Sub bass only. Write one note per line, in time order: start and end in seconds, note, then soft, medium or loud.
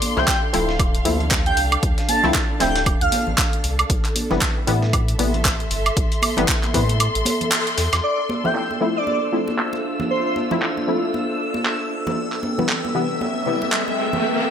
0.17 0.25 C2 medium
0.54 1.01 D1 loud
1.05 1.52 D2 loud
1.57 1.77 C2 loud
1.83 1.94 D2 loud
2.24 2.32 C2 medium
2.61 2.95 D1 loud
3.01 3.09 D2 loud
3.27 3.35 A1 medium
3.64 3.84 C2 medium
3.90 4.01 A1 loud
4.31 4.39 G1 medium
4.67 5.14 A2 loud
5.19 5.66 A1 loud
5.71 5.91 G1 loud
5.97 6.08 A1 loud
6.38 6.45 G1 medium
6.74 7.09 A2 loud
7.15 7.23 A1 loud
7.78 7.89 E2 medium
7.93 8.01 E2 medium